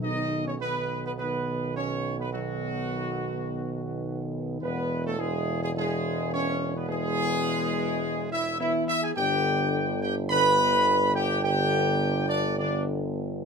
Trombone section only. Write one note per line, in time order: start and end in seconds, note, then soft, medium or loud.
0.01 0.42 D#4 medium
0.45 0.59 C#4 medium
0.60 1.00 B3 medium
1.04 1.17 B3 medium
1.18 1.71 B3 medium
1.75 2.15 C#4 medium
2.19 2.25 B3 medium
2.32 4.29 F#3 medium
4.62 5.02 B3 medium
5.05 5.18 A3 medium
5.20 5.59 G#3 medium
5.62 5.68 G#3 medium
5.77 6.29 G#3 medium
6.33 6.72 C#4 loud
6.76 6.89 B3 medium
6.91 8.32 G#3 loud
8.32 8.58 E4 medium
8.59 8.86 E4 loud
8.87 8.94 E4 loud
9.02 9.15 G#4 medium
9.16 9.97 G4 loud
10.03 10.15 G4 medium
10.32 11.12 B4 loud
11.15 11.42 G4 loud
11.43 12.25 G4 loud
12.29 12.56 D4 medium
12.58 12.84 D4 loud